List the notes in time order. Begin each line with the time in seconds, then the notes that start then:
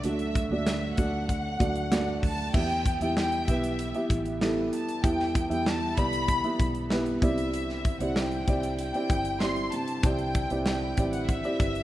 Already playing: D3 F#3 A3 D4 F#4 D5 E5
0.04 D2 D3 A3 D4 F#4 A4 E5, closed hi-hat
0.19 closed hi-hat
0.35 kick, closed hi-hat
0.51 D2 A3 D4 F#4 D5 E5
0.66 snare, closed hi-hat
0.97 D2 A3 D4 F#4 D5 F#5, kick, closed hi-hat
1.29 kick, closed hi-hat
1.60 D2 A3 D4 F#4 D5, kick, closed hi-hat
1.76 closed hi-hat
1.91 A3 D4 F#4 D5, snare, closed hi-hat
2.23 D2 A5, kick, open hi-hat
2.53 E2 E3 G3 B3 E4 G4 E5 G5, kick, crash
2.70 closed hi-hat
2.86 kick, closed hi-hat
3.01 E2 B3 E4 G4 E5 G5, closed hi-hat
3.17 G5, snare
3.32 closed hi-hat
3.48 B1 B3 E4 G4 B4 E5, kick, closed hi-hat
3.64 closed hi-hat
3.79 closed hi-hat
3.94 B3 E4 G4 E5, closed hi-hat
4.10 A1, kick, closed hi-hat
4.26 closed hi-hat
4.41 B3 E4 G4 A4, snare
4.73 A5, closed hi-hat
4.89 closed hi-hat
5.03 E2 E3 B3 E4 G4 A4 G5, kick, closed hi-hat
5.19 snare
5.35 kick, closed hi-hat
5.50 E2 B3 E4 G4 E5 G5, closed hi-hat
5.66 A5, snare
5.97 C2 B3 E4 G4 D5 B5, kick, closed hi-hat
6.13 closed hi-hat
6.28 kick, closed hi-hat
6.44 B3 E4 G4 E5, closed hi-hat
6.60 B1, kick, closed hi-hat
6.75 closed hi-hat
6.90 B3 E4 G4 B4, snare
7.06 closed hi-hat
7.22 C2 C3 D3 G3 C4 E4 G4 D5 E5, kick, closed hi-hat
7.38 closed hi-hat
7.54 closed hi-hat
7.69 snare
7.85 kick, closed hi-hat
8.00 C2 C4 E4 G4 D5 F#5, closed hi-hat
8.16 G5, snare
8.32 closed hi-hat
8.48 C2 C4 E4 G4 D5, kick, closed hi-hat
8.63 closed hi-hat
8.79 G5, closed hi-hat
8.94 C4 E4 G4 D5, closed hi-hat
9.10 G1, kick, closed hi-hat
9.25 closed hi-hat
9.40 C4 E4 G4 D5 C6, snare
9.56 closed hi-hat
9.72 C3 B4 A5, closed hi-hat
9.88 closed hi-hat
10.03 C2 C4 E4 G4 D5 G5, kick, closed hi-hat
10.19 closed hi-hat
10.35 kick, closed hi-hat
10.50 C2 C4 E4 G4 D5, closed hi-hat
10.65 G5, snare
10.97 A1 C4 E4 G4 D5, kick, closed hi-hat
11.13 F#5, closed hi-hat
11.29 E5, kick, closed hi-hat
11.44 C4 E4 G4 D5, closed hi-hat
11.60 G1, kick, closed hi-hat
11.75 closed hi-hat